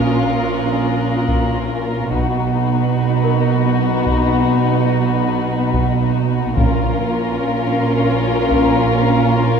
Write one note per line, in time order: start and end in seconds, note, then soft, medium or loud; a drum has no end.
0.00 2.08 A#1 soft
0.00 2.08 A#2 soft
0.00 2.09 C#4 soft
0.00 2.08 F4 soft
0.00 2.08 A#4 soft
0.00 2.64 F5 soft
0.00 1.52 D#6 soft
0.00 1.52 F#6 soft
1.28 taiko medium
2.12 6.52 B1 soft
2.12 6.53 B2 soft
2.12 6.52 B3 soft
2.12 6.53 D#4 soft
2.12 6.53 F#4 soft
2.12 taiko medium
3.24 6.53 A#4 soft
4.06 taiko medium
5.73 taiko medium
6.56 9.60 A#1 medium
6.56 8.19 A#2 medium
6.56 9.60 A#2 medium
6.56 9.60 C#4 soft
6.56 9.60 F4 medium
6.56 9.60 A#4 soft
6.56 taiko medium
8.51 taiko medium